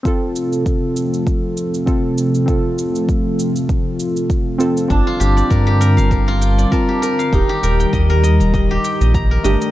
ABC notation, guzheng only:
X:1
M:4/4
L:1/16
Q:"Swing 16ths" 1/4=99
K:Fmix
V:1 name="Guzheng"
z16 | z16 | D F G d B G B f B F g d B G B f | E G B g e B e b e G g e b B e e |]